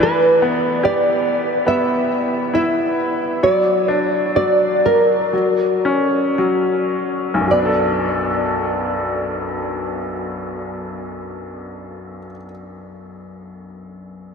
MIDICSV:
0, 0, Header, 1, 3, 480
1, 0, Start_track
1, 0, Time_signature, 4, 2, 24, 8
1, 0, Key_signature, 2, "minor"
1, 0, Tempo, 842697
1, 1440, Tempo, 910470
1, 2400, Tempo, 980392
1, 2880, Tempo, 1050788
1, 3360, Tempo, 1119403
1, 3840, Tempo, 1136364
1, 6731, End_track
2, 0, Start_track
2, 0, Title_t, "Nylon-string guitar"
2, 0, Program_c, 0, 24
2, 16, Note_on_c, 0, 71, 71
2, 457, Note_off_c, 0, 71, 0
2, 483, Note_on_c, 0, 74, 70
2, 954, Note_off_c, 0, 74, 0
2, 956, Note_on_c, 0, 76, 78
2, 1444, Note_off_c, 0, 76, 0
2, 1451, Note_on_c, 0, 76, 70
2, 1916, Note_off_c, 0, 76, 0
2, 1918, Note_on_c, 0, 74, 64
2, 2400, Note_off_c, 0, 74, 0
2, 2406, Note_on_c, 0, 74, 67
2, 2646, Note_off_c, 0, 74, 0
2, 2649, Note_on_c, 0, 70, 62
2, 3585, Note_off_c, 0, 70, 0
2, 3844, Note_on_c, 0, 74, 47
2, 5890, Note_off_c, 0, 74, 0
2, 6731, End_track
3, 0, Start_track
3, 0, Title_t, "Upright piano"
3, 0, Program_c, 1, 0
3, 0, Control_c, 1, 64, 127
3, 0, Note_on_c, 1, 52, 58
3, 8, Control_c, 1, 64, 0
3, 102, Control_c, 1, 64, 127
3, 240, Note_on_c, 1, 59, 48
3, 475, Note_on_c, 1, 67, 48
3, 939, Note_off_c, 1, 59, 0
3, 948, Note_on_c, 1, 59, 43
3, 1420, Note_off_c, 1, 67, 0
3, 1444, Note_on_c, 1, 64, 42
3, 1889, Note_off_c, 1, 59, 0
3, 1890, Note_off_c, 1, 52, 0
3, 1898, Note_off_c, 1, 64, 0
3, 1915, Note_on_c, 1, 54, 47
3, 1917, Control_c, 1, 64, 0
3, 1999, Control_c, 1, 64, 127
3, 2154, Note_on_c, 1, 62, 44
3, 2396, Note_off_c, 1, 54, 0
3, 2403, Note_on_c, 1, 54, 38
3, 2861, Note_off_c, 1, 62, 0
3, 2867, Note_off_c, 1, 54, 0
3, 2880, Note_on_c, 1, 54, 40
3, 2886, Control_c, 1, 64, 0
3, 2977, Control_c, 1, 64, 127
3, 3118, Note_on_c, 1, 61, 43
3, 3354, Note_off_c, 1, 54, 0
3, 3360, Note_on_c, 1, 54, 43
3, 3772, Note_on_c, 1, 35, 42
3, 3800, Note_on_c, 1, 42, 31
3, 3819, Note_off_c, 1, 54, 0
3, 3824, Note_off_c, 1, 61, 0
3, 3825, Note_on_c, 1, 54, 34
3, 3846, Control_c, 1, 64, 0
3, 3851, Note_on_c, 1, 59, 34
3, 3880, Note_on_c, 1, 62, 35
3, 3906, Note_on_c, 1, 69, 44
3, 3916, Control_c, 1, 64, 127
3, 5819, Note_off_c, 1, 35, 0
3, 5846, Note_off_c, 1, 42, 0
3, 5872, Note_off_c, 1, 54, 0
3, 5897, Note_off_c, 1, 59, 0
3, 5926, Note_off_c, 1, 62, 0
3, 5952, Note_off_c, 1, 69, 0
3, 6731, End_track
0, 0, End_of_file